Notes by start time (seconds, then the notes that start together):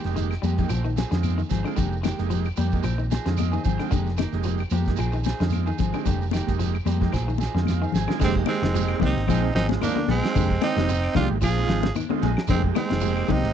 0.04 F1 G#3 A#3 D#4 G4, snare, closed hi-hat, shekere
0.16 D#3, snare, closed hi-hat, high conga, shekere
0.31 snare, claves, shekere
0.42 F2 G3 G#3 A#3 D#4 G4, closed hi-hat, high conga, shekere
0.58 G#3 A#3 D#4 G4, kick, closed hi-hat, low conga, shekere
0.69 A#1 F3 C4 D#4, muted clean electric guitar stroke, snare, closed hi-hat, high conga, claves, shekere
0.85 D#3, shekere
0.96 F3 C4 D#4 G#4, snare, closed hi-hat, high conga, shekere
1.11 F2 D3 G#3 C4 D#4 F4, snare, closed hi-hat, shekere
1.23 closed hi-hat, high conga, claves, shekere
1.38 D#3, shekere
1.49 G#1 F3 C4 D#4 G#4, kick, snare, closed hi-hat, low conga, shekere
1.65 D3 G#3 C4 D#4 F4, claves, shekere
1.76 F1 D3 G#3 A#3 D#4 G4, kick, closed hi-hat, high conga, low conga, shekere
1.92 shekere
2.03 D#3 G#3 A#3 D#4 G4, snare, closed hi-hat, high conga, claves, shekere
2.18 F1 G#3 A#3 D#4 G4, closed hi-hat, shekere
2.30 F3, closed hi-hat, high conga, shekere
2.44 claves, shekere
2.57 F2 G3 A#3 D#4 G4, muted clean electric guitar stroke, closed hi-hat, high conga, shekere
2.71 G#3 A#3 D#4 G4, kick, shekere
2.83 A#1 F3 C4 D#4, muted clean electric guitar stroke, closed hi-hat, claves, shekere
2.98 D#3, shekere
3.10 F3 D#4 G#4, muted clean electric guitar stroke, snare, closed hi-hat, high conga, shekere
3.26 F2 D3 G#3 C4 D#4 F4, snare, closed hi-hat, shekere
3.37 D#5, closed hi-hat, high conga, claves, shekere
3.52 D#3 C4 D#4 G#4, high conga, shekere
3.63 G#1 F3 C4 D#4 G#4 G5, kick, closed hi-hat, low conga, shekere
3.79 D3 G#3 C4 D#4 F4, closed hi-hat, claves, shekere
3.90 F1 D3 G#3 A#3 D#4 G4, kick, closed hi-hat, high conga, low conga, shekere
4.06 snare, shekere
4.17 D#3 A#3 D#4, snare, closed hi-hat, high conga, claves, shekere
4.32 F1 G#3 A#3 D#4 G4, closed hi-hat, shekere
4.43 F3, closed hi-hat, high conga, shekere
4.58 claves, shekere
4.70 F2 F3 G#3 A#3 D#4 G4, closed hi-hat, high conga, shekere
4.85 G#3 A#3 D#4 G4, kick, snare, closed hi-hat, shekere
4.96 A#1 F3 C4 D#4 G#4, closed hi-hat, claves, shekere
5.12 D#3, shekere
5.24 C4 D#4 G#4, snare, closed hi-hat, high conga, shekere
5.40 F2 D3 G#3 C4 D#4 F4, snare, closed hi-hat, shekere
5.50 closed hi-hat, high conga, claves, shekere
5.66 D#3 D#4 G#4, shekere
5.78 G#1 F3 C4 G#4, kick, closed hi-hat, low conga, shekere
5.92 D3 G#3 C4 D#4 G4, claves, shekere
6.05 F1 D3 G#3 A#3 D#4 G4, kick, closed hi-hat, high conga, low conga, shekere
6.21 shekere
6.31 D#3 G#3 A#3 D#4 G4, snare, closed hi-hat, high conga, claves, shekere
6.47 F1 G#3 A#3 D#4 G4, kick, closed hi-hat, shekere
6.59 F3, snare, closed hi-hat, high conga, shekere
6.75 claves, shekere
6.85 F2 G3 G#3 A#3 D#4 G4, snare, closed hi-hat, high conga, shekere
7.00 G#3 A#3 D#4 G4, kick, snare, low conga, shekere
7.12 A#1 F3 C4 D#4 G#4, kick, snare, claves, shekere
7.28 D#3, shekere
7.38 F3 C4 D#4 G#4, snare, high conga, shekere
7.55 F2 D3 G#3 C4 D#4 F4, snare, shekere
7.65 F5, snare, high conga, claves, shekere
7.82 D#3 C4 D#4 G#4, shekere
7.92 G#1 F3 C4 D#4 G#4 G#5, snare, low conga, shekere
8.08 D3 G#3 C4 D#4 F4, snare, claves, shekere
8.20 F1 D3 G#3 A#3 D#4 G4, kick, crash, low conga, shekere
8.24 C4
8.36 kick
8.46 D#3 G#3 A#3 C4 D#4 G4, snare, ride bell, high conga, claves, shekere
8.62 F1 D#3, snare, ride bell
8.74 F3 G#3 A#3 D#4 G4, ride bell, shekere
8.88 claves
9.00 C2 D#3 G#3 A#3 C4 D#4 G4, kick, ride bell, high conga, low conga, shekere
9.05 D#4
9.16 G#1, snare, ride bell
9.27 A#1 F3 G#3 C4 D#4 F4 G#4, kick, ride bell, low conga, claves, shekere
9.54 G#1 F3 C4 D#4 G#4, snare, ride bell, shekere
9.69 G#3 C4 D#4 F4, snare, ride bell, high conga
9.81 D#3 F3 A#3 C4 D4 D#4, snare, ride bell, high conga, claves, shekere
9.96 D3, high conga
10.08 A#1 F3 G#3 C4 D#4 G#4, ride bell, high conga, low conga, shekere
10.22 G#3 C4 D#4 F4, snare, ride bell, claves
10.35 F1 D3 G#3 A#3 D#4 G4, kick, ride bell, low conga, shekere
10.51 kick
10.61 D#3 G#3 A#3 C4 D#4 G4, ride bell, high conga, claves, shekere
10.76 F1 D#3, snare, ride bell, high conga
10.89 muted clean electric guitar stroke, ride bell, shekere
11.04 claves
11.14 C2 D#3 G#3 A#3 D4 D#4 F4 G4, kick, ride bell, high conga, low conga, shekere
11.30 G#1
11.41 A#1 F3 C4 F4 G#4, muted clean electric guitar stroke, kick, snare, ride bell, claves, shekere
11.57 G#3 C4 D#4 F4
11.68 G#1 F3 C4 D#4, snare, ride bell, shekere
11.83 snare, high conga
11.95 D#3, ride bell, high conga, claves, shekere
12.10 D3 G#3 C4 D#4 F4, high conga
12.22 A#1 F3 D#4 G#4, muted clean electric guitar stroke, snare, ride bell, low conga, shekere
12.37 snare, claves
12.47 F1 D3 G#3 A#3 C4 D#4 G4, kick, snare, ride bell, low conga, shekere
12.64 kick
12.75 D#3 G#3 A#3 C4 D#4, muted clean electric guitar stroke, snare, ride bell, high conga, claves, shekere
12.90 F1 D#3, snare, ride bell, high conga
13.01 F3 G#3 A#3 D#4 G4, ride bell, shekere
13.17 claves
13.28 C2 D#3 G#3 A#3 C4 D#4 G4, kick, ride bell, high conga, low conga, shekere
13.32 D#4
13.44 G#1, ride bell